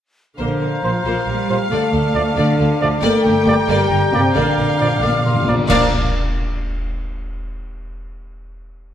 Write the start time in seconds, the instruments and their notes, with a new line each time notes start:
0.38 double bass section A#1, cello section D3, viola section A#3, french horn section D4, violin section C5 F5, clarinet C5, cor anglais F5, flute A#5
0.61 double bass section A#1, viola section A#3, violin section A#4
0.83 double bass section A#1, cello section F3, trombone section F3 A#3, viola section A#3, violin section F4, french horn section F4, trumpet C5
1.05 double bass section A#1, cello section F3, viola section A#3, french horn section F4, violin section C5
1.27 double bass section A#1, cello section G3, viola section A#3, french horn section G4, violin section A#4
1.49 double bass section A#1, trombone section F3 A#3, viola section A#3, violin section F4, trumpet C5
1.71 double bass section D2, cello section A3, viola section A3, french horn section A4, violin section D5, clarinet D5, flute A5
1.92 double bass section D2, viola section A3, violin section A4
2.14 double bass section D2, trombone section F3 A3, viola section A3, violin section F4, trumpet D5
2.36 double bass section D2, cello section D3, viola section A3, french horn section D4, violin section D5
2.59 double bass section D2, viola section A3, violin section A4
2.81 double bass section D2, trombone section F3 A3, viola section A3, violin section F4, trumpet D5
3.02 double bass section G1, cello section A3, viola section A#3, french horn section A4, violin section D5 G5, cor anglais G5, flute A#5
3.25 double bass section G1, viola section A#3, violin section A#4
3.46 double bass section G1, trombone section G3 A#3, viola section A#3, violin section G4, trumpet D5
3.68 double bass section G1, cello section G3, viola section A#3, french horn section G4, violin section D5
3.90 double bass section G1, viola section A#3, violin section A#4
4.12 double bass section G1, cello section C3, trombone section G3 A#3, viola section A#3, french horn section C4, violin section G4, trumpet D5
4.35 double bass section A#1, timpani A#2, cello section D3, viola section A#3, french horn section D4, violin section D5 F5, clarinet D5
4.43 timpani A#2
4.50 timpani A#2
4.57 double bass section A#1, timpani A#2, viola section A#3, violin section A#4
4.66 timpani A#2
4.74 timpani A#2
4.80 double bass section A#1, timpani A#2, trombone section F3 A#3, viola section A#3, violin section F4, trumpet D5
4.89 timpani A#2
4.97 timpani A#2
5.02 double bass section A#1, timpani A#2, viola section A#3, violin section D5, cor anglais F5, flute D6
5.11 timpani A#2
5.19 timpani A#2
5.25 double bass section A#1, timpani A#2, viola section A#3, violin section A#4, flute C6
5.34 timpani A#2
5.42 timpani A#2
5.47 double bass section A#1, timpani A#2, trombone section F3 A#3, viola section A#3, violin section F4, trumpet D5, flute A#5
5.57 timpani A#2
5.69 double bass section A#1, timpani A#2, trombone section F3 A#3, cello section A#3, french horn section A#3, viola section D4, clarinet D5, violin section D5 F5, trumpet D5, cor anglais F5, flute A#5, concert bass drum, crash